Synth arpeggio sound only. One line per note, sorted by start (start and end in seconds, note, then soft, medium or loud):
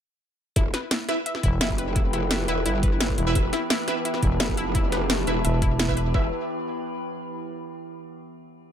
0.56 0.66 E4 loud
0.74 0.89 B4 medium
0.91 1.01 E4 medium
1.09 1.15 E4 medium
1.26 1.41 E5 medium
1.43 1.54 E4 loud
1.61 1.71 E4 loud
1.78 1.94 B4 medium
1.96 2.06 E4 medium
2.13 2.19 E4 medium
2.31 2.46 E5 medium
2.48 2.58 E4 loud
2.66 2.76 E4 loud
2.83 2.98 B4 medium
3.00 3.11 E4 medium
3.18 3.24 E4 medium
3.35 3.51 E5 medium
3.53 3.63 E4 loud
3.70 3.80 E4 loud
3.88 4.03 B4 medium
4.05 4.15 E4 medium
4.22 4.29 E4 medium
4.40 4.55 E5 medium
4.57 4.68 E4 loud
4.75 4.85 E4 loud
4.92 5.07 B4 medium
5.10 5.20 E4 medium
5.27 5.33 E4 medium
5.45 5.60 E5 medium
5.62 5.72 E4 loud
5.79 5.90 E4 loud
5.97 6.12 B4 medium
6.14 6.31 E4 medium